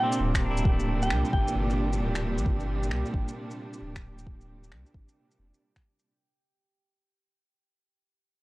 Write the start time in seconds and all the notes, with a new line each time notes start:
Already playing: A#2 C3 G3 C4 D4 F4 G4 A#4 C5 E5 G5
0.04 C4
0.12 shaker
0.20 D1
0.34 finger snap, kick, shaker
0.40 A#3
0.45 D4
0.51 E4
0.57 shaker
0.65 kick
0.72 A3
0.80 shaker
1.02 G5, shaker
1.10 C2, finger snap
1.25 shaker
1.33 G1 G5, kick
1.41 E3
1.48 shaker
1.55 G1
1.70 shaker
1.93 shaker
2.00 D1
2.15 finger snap, shaker
2.37 A#1, shaker
2.46 G1, kick
2.60 shaker
2.83 shaker
2.90 C2, finger snap
3.06 shaker
3.14 G1, kick
3.28 shaker
3.51 shaker
3.73 shaker
3.81 D1
3.96 finger snap, kick, shaker
4.18 shaker
4.27 kick
4.41 shaker
4.64 shaker
4.71 C2, finger snap
4.86 shaker
4.94 G1, kick
5.09 shaker
5.31 shaker
5.39 F1
5.54 shaker
5.76 finger snap, kick, shaker
5.99 shaker